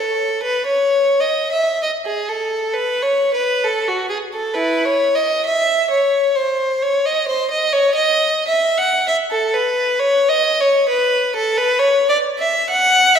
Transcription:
0.00 0.44 A4 medium
0.43 0.67 B4 medium
0.66 1.20 C#5 medium
1.21 1.52 D#5 medium
1.52 1.82 E5 medium
1.83 1.91 D#5 medium
2.06 2.28 G#4 soft
2.29 2.75 A4 soft
2.74 3.05 B4 medium
3.03 3.34 C#5 medium
3.34 3.64 B4 medium
3.64 3.88 A4 medium
3.88 4.11 F#4 soft
4.09 4.17 G#4 medium
4.34 4.56 A4 medium
4.55 4.84 E4 medium
4.55 4.86 B4 medium
4.85 5.16 C#5 medium
5.15 5.46 D#5 medium
5.46 5.90 E5 medium
5.91 6.35 C#5 medium
6.36 6.82 C5 medium
6.82 7.05 C#5 medium
7.06 7.28 D#5 medium
7.28 7.51 C5 medium
7.51 7.73 D#5 medium
7.73 7.96 C#5 medium
7.95 8.48 D#5 medium
8.48 8.78 E5 medium
8.78 9.09 F#5 medium
9.08 9.16 E5 medium
9.31 9.54 A4 medium
9.54 10.00 B4 medium
9.99 10.30 C#5 medium
10.29 10.59 D#5 medium
10.61 10.90 C#5 medium
10.89 11.34 B4 medium
11.36 11.57 A4 medium
11.58 11.80 B4 medium
11.79 12.10 C#5 medium
12.09 12.17 D5 medium
12.39 12.69 E5 medium
12.70 13.15 F#5 medium
13.15 13.19 E5 medium

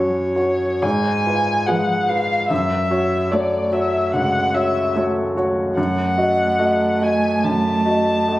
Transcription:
0.00 0.85 F#2 soft
0.00 0.61 F#3 soft
0.00 0.32 C#4 soft
0.00 0.35 F#4 soft
0.00 0.36 C#5 soft
0.00 0.84 C#5 medium
0.35 0.79 F#4 soft
0.35 0.79 C#5 soft
0.82 1.25 G#2 soft
0.82 1.68 G#5 medium
1.26 1.64 F4 soft
1.26 1.64 B4 soft
1.67 2.31 F3 medium
1.67 2.05 G#3 soft
1.67 2.05 F4 soft
1.67 2.05 B4 soft
1.67 2.10 F#5 medium
2.09 2.46 F4 soft
2.09 2.47 B4 soft
2.09 2.48 F5 medium
2.49 2.90 F#2 medium
2.49 3.33 E5 medium
2.90 3.27 F#4 soft
2.90 3.28 C#5 soft
3.31 3.68 A3 soft
3.31 3.94 A3 medium
3.31 3.69 F#4 soft
3.31 3.69 C#5 soft
3.31 3.74 D5 medium
3.72 4.09 F#4 soft
3.72 4.10 C#5 soft
3.72 4.14 E5 medium
4.13 4.53 C#2 soft
4.13 4.56 F#5 medium
4.54 4.92 F#4 soft
4.54 4.92 C#5 soft
4.54 4.95 E5 medium
4.95 5.57 A3 medium
4.95 5.32 A3 soft
4.95 5.33 F#4 soft
4.95 5.33 C#5 soft
5.37 5.74 F#4 soft
5.37 5.74 C#5 soft
5.77 6.17 F#2 medium
5.77 8.39 A3 medium
5.77 7.04 F#5 medium
6.18 6.55 F#4 soft
6.18 6.55 D#5 soft
6.59 6.97 A3 soft
6.59 6.98 F#4 soft
6.59 6.98 D#5 soft
7.01 7.40 F#4 soft
7.01 7.40 D#5 soft
7.01 7.45 G#5 medium
7.44 7.84 F#2 soft
7.44 8.39 A5 medium
7.86 8.23 F#4 soft
7.86 8.23 D#5 soft
8.28 8.39 A3 soft
8.28 8.39 F#4 soft
8.28 8.39 D#5 soft

